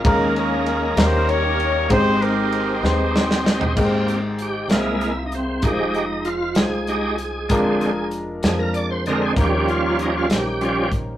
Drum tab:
CC |------------|------------|x-----------|------------|
RD |x-x-x-x-x-x-|x-x-x-------|------------|------------|
HH |------------|------------|--x-x-x-x-x-|x-x-x-x-x-x-|
SD |------o-----|------o-ooo-|------o-----|------o-----|
FT |------------|-----------o|------------|------------|
BD |o-----------|o-----------|o-----------|o-----------|

CC |------------|------------|
RD |------------|------------|
HH |x-x-x-x-x-x-|x-x-x-x-x-x-|
SD |------o-----|------o-----|
FT |------------|------------|
BD |o-----------|o---------o-|